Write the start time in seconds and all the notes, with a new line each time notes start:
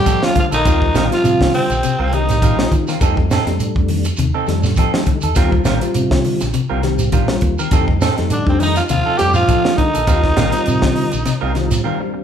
Already playing: G3 G4
0.05 F3 C4 D#4 A4, kick, closed hi-hat, shekere
0.22 F3 G3 A3 D4 F4, muted clean electric guitar stroke, snare
0.35 D3 F3 F4, muted clean electric guitar stroke, muted fingered electric bass stroke, kick, closed hi-hat, shekere
0.51 A#1 D#3 D#4 A4, closed hi-hat, shekere
0.65 D#2 G3 C4 F4 A#4, kick, closed hi-hat, shekere
0.82 muted clean electric guitar stroke, kick
0.95 A#1 D#3 G3 C4 F4 A#4, snare, closed hi-hat, shekere
1.10 F3 G3 C4 F4, muted clean electric guitar stroke, snare, closed hi-hat, shekere
1.24 C3, closed hi-hat, shekere
1.40 D#3, muted clean electric guitar stroke, kick, snare
1.54 C3 D3 C4, open hi-hat, shekere
1.70 A#1, muted clean electric guitar stroke, closed hi-hat, shekere
1.83 C3, muted clean electric guitar stroke, closed hi-hat, shekere
1.99 C2 G3 C4 F4 A#4
2.13 D#3 G3 C4 D#4 G4, muted clean electric guitar stroke, closed hi-hat, shekere
2.29 snare, closed hi-hat, shekere
2.42 A#1 D#3 G3 C4 F4 A#4, kick, closed hi-hat, shekere
2.58 G3 C4 F4, muted clean electric guitar stroke, snare
2.72 D#3, muted clean electric guitar stroke, kick, closed hi-hat, shekere
2.88 D#3 C4 F4 A#4, snare, shekere
3.01 F2 G3 A3 C4 D#4 A4, muted clean electric guitar stroke, kick, closed hi-hat, shekere
3.17 muted clean electric guitar stroke, kick
3.31 C4 D#4 A4, snare, closed hi-hat, shekere
3.46 F2 G3 A3 D4, muted clean electric guitar stroke, snare, closed hi-hat, shekere
3.60 closed hi-hat, shekere
3.76 F2, muted clean electric guitar stroke, kick
3.88 D#3, open hi-hat, shekere
4.04 muted clean electric guitar stroke, closed hi-hat, shekere
4.17 D#2 C3, muted clean electric guitar stroke, closed hi-hat, shekere
4.34 C4 D#4 A4, muted fingered electric bass stroke
4.47 F2 D#3 G3 A3 D4, muted clean electric guitar stroke, snare, closed hi-hat, shekere
4.63 snare, shekere
4.76 F3 C4 D#4 A4, kick, closed hi-hat, shekere
4.94 F3 G3 A3 D#4, muted clean electric guitar stroke, snare
5.05 D3, muted clean electric guitar stroke, kick, closed hi-hat, shekere
5.21 D#2 D#4 A4, closed hi-hat, shekere
5.35 D#2 G3 C4 F4 A#4, kick, snare, closed hi-hat, shekere
5.52 muted clean electric guitar stroke, kick
5.64 A#1 D#3 G3 C4 F4 A#4, snare, closed hi-hat, shekere
5.81 G3 C4 F4, muted clean electric guitar stroke, closed hi-hat, shekere
5.94 C3, closed hi-hat, shekere
6.11 D#3, muted clean electric guitar stroke, kick, snare
6.25 D3, open hi-hat, shekere
6.41 A#1, muted clean electric guitar stroke, snare, closed hi-hat, shekere
6.53 C3, muted clean electric guitar stroke, closed hi-hat, shekere
6.69 C2 G3 C4 F4 A#4
6.83 D#3 G3 C4 G4, muted clean electric guitar stroke, snare, closed hi-hat, shekere
6.99 closed hi-hat, shekere
7.12 A#1 D#3 G3 F4 A#4, muted clean electric guitar stroke, kick, closed hi-hat, shekere
7.28 G3 C4 F4, muted clean electric guitar stroke, snare
7.41 D#2, muted clean electric guitar stroke, kick, closed hi-hat, shekere
7.59 D#3 C4 A#4, muted clean electric guitar stroke, shekere
7.71 F2 D3 G3 A3 C4 D#4 A4, kick, closed hi-hat, shekere
7.88 muted clean electric guitar stroke, kick
8.01 C4 D#4 A4, snare, closed hi-hat, shekere
8.18 F2 G3 A3 D#4, muted clean electric guitar stroke, snare, closed hi-hat, shekere
8.30 D3 D4, closed hi-hat, shekere
8.46 F2 C3 C4, muted clean electric guitar stroke, kick
8.60 D#3 D#4, open hi-hat, shekere
8.76 F3 F4, snare, closed hi-hat, shekere
8.89 D#2 C3 F3 F4, muted clean electric guitar stroke, closed hi-hat, shekere
9.06 C4 D#4 A4, muted fingered electric bass stroke
9.18 F2 G3 A3 C4 G4, muted clean electric guitar stroke, snare, closed hi-hat, shekere
9.33 F3 F4, shekere
9.48 F3 C4 D#4 A4, kick, closed hi-hat, shekere
9.64 F3 G3 A3 D#4, muted clean electric guitar stroke, snare
9.75 D3 D#3 D#4, muted fingered electric bass stroke, muted clean electric guitar stroke, kick, closed hi-hat, shekere
9.94 A#1 D#4 A4, closed hi-hat, shekere
10.07 D#2 G3 C4 F4 A#4, kick, closed hi-hat, shekere
10.24 muted clean electric guitar stroke, kick, snare
10.36 A#1 D#3 G3 C4 F4 A#4, snare, closed hi-hat, shekere
10.52 G3 C4 F4, muted clean electric guitar stroke, snare, closed hi-hat, shekere
10.66 C3, closed hi-hat, shekere
10.82 D#3, muted clean electric guitar stroke, kick, snare
10.96 D3, open hi-hat, shekere
11.12 A#1, muted clean electric guitar stroke, closed hi-hat, shekere
11.25 C3, muted clean electric guitar stroke, snare, closed hi-hat, shekere
11.41 C2 G3 C4 F4 A#4
11.54 D#3 G3 C4 F4, muted clean electric guitar stroke, snare, closed hi-hat, shekere
11.71 snare, closed hi-hat, shekere
11.84 D#3 G3 C4 F4 A#4
12.00 G3 C4 D4, muted clean electric guitar stroke
12.14 muted clean electric guitar stroke